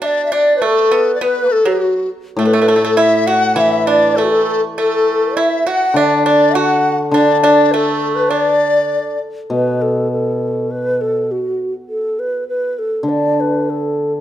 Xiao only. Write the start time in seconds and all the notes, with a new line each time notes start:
0.03 D5
0.33 D5
0.63 A4
0.92 B4
1.22 B4
1.52 A4
1.68 F#4
2.39 A4
2.98 E5
3.30 F#5
3.58 E5
3.88 D5
4.18 A4
4.77 A4
5.38 E5
5.68 F#5
5.96 D5
6.26 D5
6.54 F#5
7.13 D5
7.41 D5
7.72 A4
8.17 B4
8.31 D5
9.51 B4
9.82 A4
10.12 A4
10.71 B4
11.01 A4
11.32 F#4
11.89 A4
12.19 B4
12.49 B4
12.79 A4
13.09 D5
13.40 B4
13.70 A4